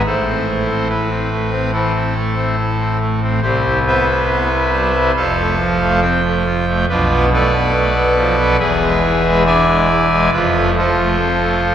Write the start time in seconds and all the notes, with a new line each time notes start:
0.05 A1 A2 E4 A4 C5
0.27 C4
0.47 A3
0.69 C4
0.89 E4 B4
1.10 C4
1.30 A3
1.51 C4
1.72 E3 C4 E4 A4
1.94 C4
2.15 A3
2.34 C4
2.58 E4
2.79 C4
3.00 A3
3.22 C4
3.41 C2 C3 E4 G4 C5
3.64 E4
3.86 B3 B4 C5 E5
4.09 E4
4.29 B3
4.52 E4
4.72 G3
4.94 E4
5.16 F1 F2 A4 C5 F5
5.37 A3
5.58 F3
5.80 A3
6.01 C4 G5
6.23 A3
6.45 F4
6.66 A3
6.89 B1 B2 D4 F4 B4
7.10 B3
7.33 A3 A4 B4 D5
7.53 B3
7.74 A3
7.95 B3
8.15 F3
8.37 B3
8.59 E1 E2 G#4 B4 E5
8.81 G#3
9.02 E3
9.25 G#3
9.46 D4 D5 E5 G#5
9.69 G#3
9.89 E4
10.11 G#3
10.33 F1 F2 F4 B4
10.55 A3
10.77 F3 F4 A4 C5
10.97 A3
11.19 C4
11.42 A3
11.63 F3